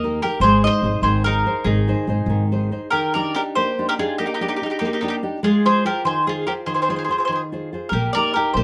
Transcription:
Already playing: D#2 A#3 A#4 D#5
0.03 D#4 G4 A#4
0.22 D#4 G4 A#4
0.40 G#1 G#3 G#4 C5
0.64 D#4 G#4 C5 D#5
0.82 G#1 D#4 G#4 C5
1.02 G#1 D#3 G#4 C5
1.24 D#4 G#4 A#4 C5
1.46 D#4 G#4 C5
1.64 G#1 D#3 D#4 G#4
1.88 D#4 G#4 C5
2.07 G#1 D#4 G#4 C5
2.26 G#1 D#3
2.52 D#4 G#4 C5
2.71 D#4 G#4 C5
2.91 D#3 G4 A#4
3.14 D4 D#4 G4 A#4 D5
3.35 D4 D#4 G4 A#4
3.55 A#3 G4 C5
3.79 D4 D#4 G4
3.89 G4 A#4
3.99 D4 D#4 F4 G4 G#4
4.18 A#3 D#4 G4
4.26 D#4 G4
4.34 D#4 G4
4.41 D4 D#4 G4
4.48 D#4 G4
4.56 D#4 G4
4.62 D4 D#4 G4
4.66 G4
4.70 D#4 G4
4.79 A#3 D#4 G4
4.85 D#4 G4
4.93 D#4 G4
5.01 D4 D#4 G4
5.08 D#4 G4
5.23 D4 D#4 G4
5.43 G#3 F4 G#4
5.65 F4 G#4 C5
5.85 F4 G4 G#4 A#4 C5
6.05 D#3 G#4 C5
6.26 F4 G#4 C5
6.46 F4 G4 G#4 A#4 C5
6.66 D#3 G#4 C5
6.74 G#4 C5
6.82 G#4 C5
6.89 F4 G#4 C5
6.96 G#4 C5
7.04 G#4 C5
7.09 F4 G#4 C5
7.18 G#4 C5
7.25 D#3 G#4 C5
7.32 G#4 C5
7.52 F4 G#4 C5
7.73 F4 G#4 C5
7.89 A#1 G4 A#4
7.94 A#3
8.13 D#4 G4 A#4 D5
8.34 D#4 G4 A#4
8.54 A#1 A#3 G4 C5

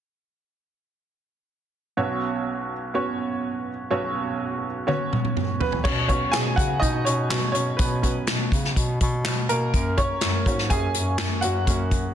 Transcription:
1.97 B1 B2 B3 C#4 F#4 C#5
2.94 B3 C#4 F#4 C#5
3.90 B1 B2 B3 C#4 F#4 C#5
4.87 B3 C#4 F#4 C#5, high tom
5.13 mid tom
5.25 mid tom
5.37 mid tom
5.60 B3 B4, floor tom
5.72 floor tom
5.84 B2 C#4 C#5, kick, crash
6.08 F#3 B3 C#4 C#5, kick, closed hi-hat
6.32 B2 G#4 G#5, snare, clap, closed hi-hat
6.56 C#3 F#4 F#5, kick, closed hi-hat
6.80 B2 D#4 D#5, kick, closed hi-hat
7.05 B2 C#4 C#5, closed hi-hat
7.29 B2 F#3 B3 C#4, snare, clap, closed hi-hat
7.52 B2 C#4 C#5, closed hi-hat
7.77 B2 B3 B4, kick, closed hi-hat
8.02 F#3 B3 C#4, kick, closed hi-hat
8.27 B2, snare, clap, closed hi-hat
8.52 C#3, kick, closed hi-hat
8.65 snare
8.76 B2, kick, closed hi-hat
9.01 B2, kick, closed hi-hat
9.25 B2, snare, clap, closed hi-hat
9.49 B2 A#3 A#4, closed hi-hat
9.74 F#2, kick, closed hi-hat
9.98 C#4 C#5, kick, closed hi-hat
10.21 F#2, snare, clap, closed hi-hat
10.46 G#2 F#3 A#3 C#4 C#5, kick, closed hi-hat
10.58 snare
10.70 F#2 G#4 G#5, kick, closed hi-hat
10.94 F#2, closed hi-hat
11.18 F#2, snare, clap, closed hi-hat
11.41 F#2 F#3 A#3 C#4 F#4 F#5, closed hi-hat
11.65 F#2 F#3 A#3 C#4, kick, closed hi-hat
11.91 kick, closed hi-hat

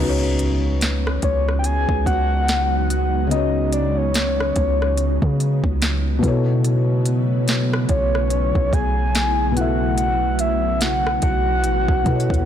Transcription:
Already playing: C#3 F#3 G#3 B3 D#4, impact
0.00 C#2 D#4 F#4 B4
0.09 C#5
0.39 closed hi-hat
0.81 snare, closed hi-hat
1.07 cross-stick
1.22 C#2 C#5, kick, closed hi-hat
1.49 cross-stick
1.59 G5
1.64 G#5, closed hi-hat
1.89 C#2, kick
2.06 C#2 F#5, kick, closed hi-hat
2.48 snare, closed hi-hat
2.90 F#5, closed hi-hat
3.27 C#3 B3
3.31 D#4 F#4 D#5, closed hi-hat
3.36 C#5
3.73 D5, closed hi-hat
3.97 C#5
4.14 snare, closed hi-hat
4.40 cross-stick
4.56 C#2, kick, closed hi-hat
4.82 cross-stick
4.97 closed hi-hat
5.22 C#3, kick
5.40 closed hi-hat
5.64 C#2, kick
5.82 snare, closed hi-hat
6.19 B2 B3
6.23 B2 A3 B3 E4 A4, kick, closed hi-hat
6.28 C#5
6.64 closed hi-hat
7.06 closed hi-hat
7.48 snare, closed hi-hat
7.74 cross-stick
7.89 B1 C#5, kick, closed hi-hat
8.15 cross-stick
8.30 closed hi-hat
8.55 B1, kick
8.73 B1 G#5, kick, closed hi-hat
9.15 snare, closed hi-hat
9.52 B2 B3
9.56 C#4 E4 A4 F#5, closed hi-hat
9.61 E5
9.98 F#5, closed hi-hat
10.39 E5, closed hi-hat
10.81 F#5, snare, closed hi-hat
11.07 cross-stick
11.22 B1 F#5, kick, closed hi-hat
11.64 A1, closed hi-hat
11.88 B1, kick
12.04 B2 B3 E4 A4, kick, closed hi-hat
12.08 B4
12.15 C#5
12.20 closed hi-hat
12.30 D#2, kick, closed hi-hat

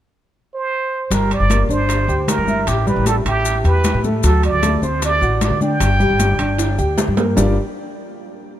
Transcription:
0.54 C5
1.10 G1 G3 G4 A#4, high bongo, high conga, high timbale, maracas
1.31 D5, high conga, high timbale, maracas
1.40 G1
1.50 A#3 A#4, high bongo, high conga, high timbale, maracas
1.69 G1 D4 C5 D5, high conga, maracas
1.89 high bongo, high conga, high timbale, maracas
2.08 D2 G4 G5, high conga, maracas
2.28 A#4, high bongo, low bongo, high conga, high timbale, low timbale, maracas
2.38 G1
2.47 E4 E5, high conga, maracas
2.67 A1 G4, high bongo, high conga, high timbale, maracas
2.86 G3 G4 B4, high bongo, high conga, maracas
2.96 A1
3.06 A4, high bongo, high conga, high timbale, maracas
3.25 A1 E4 G4 E5, high bongo, high conga, high timbale, maracas
3.45 high bongo, high conga, maracas
3.64 E2 G4 B4 G5, high conga, high timbale, maracas
3.84 high bongo, low bongo, high conga, high timbale, maracas
3.94 A2
4.04 A3 A4, high bongo, high conga, maracas
4.23 D2 F#3 F#4 A4, high bongo, high conga, high timbale, maracas
4.43 D5, high conga, high timbale, maracas
4.53 D2
4.63 A3 A4, high bongo, high conga, high timbale, maracas
4.82 D2 C4 C5, high conga, maracas
5.02 D5, high bongo, high conga, high timbale, maracas
5.21 A1 F#4 F#5, high conga, maracas
5.41 D5, high bongo, low bongo, high conga, high timbale, maracas
5.50 D3
5.61 D4 D5 G5, high conga, maracas
5.80 G1, high bongo, high timbale, maracas
6.00 G3 G4, high bongo, high conga, maracas
6.10 G1
6.20 high bongo, high conga, high timbale, maracas
6.39 G1 D4 D5, high bongo, high conga, high timbale, maracas
6.58 high bongo, high conga, high timbale, maracas
6.78 D2 G4 G5, high conga, maracas
6.98 high bongo, low bongo, high conga, low timbale, maracas
7.08 G2
7.17 A#3 A#4, high bongo, high conga, low timbale, maracas
7.36 G1 G3 D4 F4 G4 A#4 D5, low bongo, low conga, low timbale, maracas

